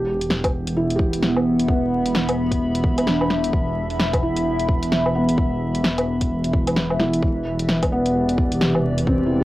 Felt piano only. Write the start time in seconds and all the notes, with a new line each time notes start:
Already playing: G4
0.77 E4
0.96 G4
1.69 B3
3.07 D4
4.22 E4
5.15 B3
7.00 E4
7.92 B3
9.08 C4
9.26 E4
9.41 G4